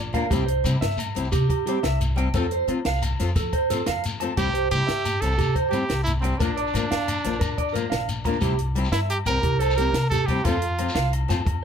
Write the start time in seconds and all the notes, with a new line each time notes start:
Already playing: A#1
0.13 F3 A#3 D4 A#4 F5, kick, closed hi-hat, low agogo, shekere
0.30 C2 G3 C4 E4 G4, kick, closed hi-hat, low agogo, shekere
0.46 C5, closed hi-hat
0.64 C3 G3 C4 E4 G4, closed hi-hat, low agogo, shekere
0.81 G2 E5, snare, closed hi-hat
0.91 shekere
0.98 closed hi-hat, low agogo, shekere
1.15 C2 G3 C4 E4 G4, closed hi-hat, shekere
1.24 shekere
1.32 C3 G4, kick, closed hi-hat, low agogo, shekere
1.49 G4, kick, closed hi-hat, low agogo
1.66 G3 C4 E4 G4, closed hi-hat
1.83 C2 E5, snare, closed hi-hat, low agogo
2.01 closed hi-hat, shekere
2.16 G3 C4 E4 G4 G5, closed hi-hat, low agogo
2.33 F2 F3 C4 F4 A4, kick, closed hi-hat, low agogo, shekere
2.51 C5, closed hi-hat
2.68 F3 C4 F4, closed hi-hat, low agogo
2.85 C2 F5, snare, closed hi-hat
2.96 shekere
3.02 closed hi-hat, low agogo, shekere
3.19 F2 F3 C4 F4 A4, snare, closed hi-hat, shekere
3.28 shekere
3.36 F3 A4, kick, closed hi-hat, low agogo, shekere
3.53 C5, kick, closed hi-hat, low agogo
3.70 F3 C4 A4, closed hi-hat, shekere
3.86 F2 F5, snare, closed hi-hat, low agogo
4.04 closed hi-hat, shekere
4.20 F3 C4 F4 A4 A5, closed hi-hat, low agogo
4.37 C2 G3 C4 E4 G4, kick, closed hi-hat, low agogo, shekere
4.54 C5, closed hi-hat
4.71 C3 G3 C4 E4 G4, closed hi-hat, low agogo, shekere
4.87 G2 E5, snare, closed hi-hat
4.98 shekere
5.05 closed hi-hat, low agogo, shekere
5.21 C2 G3 C4 E4 A4, snare, closed hi-hat, shekere
5.25 G4
5.32 shekere
5.38 C3 G4, kick, closed hi-hat, low agogo, shekere
5.55 C5, kick, closed hi-hat, low agogo
5.70 G3 C4 E4 G4, closed hi-hat, shekere
5.74 G4
5.89 C2, snare, closed hi-hat, low agogo
6.04 E4, closed hi-hat, shekere
6.20 G3 C4 G5, closed hi-hat, low agogo
6.25 E4 G4
6.38 A#1 F3 A#3 D4 A#4, kick, closed hi-hat, low agogo, shekere
6.57 D5, closed hi-hat
6.67 shekere
6.73 A#2 F3 A#3 D4, closed hi-hat, low agogo, shekere
6.91 F2 F5, snare, closed hi-hat
7.01 shekere
7.08 closed hi-hat, low agogo, shekere
7.17 shekere
7.24 A#1 F3 A#3 D4, snare, closed hi-hat
7.33 shekere
7.40 A#2 A#4, kick, closed hi-hat, low agogo, shekere
7.58 D5, kick, closed hi-hat, low agogo
7.69 shekere
7.73 F3 A#3 D4 A#4, closed hi-hat, shekere
7.90 A#1 F5, snare, closed hi-hat, low agogo
8.09 closed hi-hat, shekere
8.24 F3 A#3 D4 A#5, kick, closed hi-hat, low agogo, shekere
8.33 shekere
8.41 C2 G3 C4 E4 G4, kick, closed hi-hat, low agogo, shekere
8.59 closed hi-hat
8.75 G3 C4 E4 G4, closed hi-hat, low agogo
8.85 shekere
8.91 G2 E4 E5, snare, closed hi-hat
9.10 G4, closed hi-hat, low agogo
9.26 C2 G3 C4 E4 A#4 G5, snare, closed hi-hat, shekere
9.30 G4
9.42 C2 G4, kick, closed hi-hat, low agogo
9.59 A4 C5, closed hi-hat, low agogo, shekere
9.70 shekere
9.76 G3 C4 G4 A#4, closed hi-hat, shekere
9.81 E4 G4
9.93 C3, snare, closed hi-hat, low agogo
9.97 shekere
10.09 G4 A4, kick, closed hi-hat
10.14 shekere
10.26 G3 G4 G5, kick, closed hi-hat, low agogo
10.30 C4 E4 G4
10.44 F2 F3 C4 F4 A4, kick, closed hi-hat, low agogo, shekere
10.62 closed hi-hat
10.78 F3 C4 F4 A4, closed hi-hat, low agogo
10.89 shekere
10.95 C2 F5, snare, closed hi-hat, shekere
11.13 closed hi-hat, low agogo
11.28 F2 F3 C4 F4 A4 A5, snare, closed hi-hat, shekere
11.45 F2, muted clean electric guitar stroke, kick, closed hi-hat, low agogo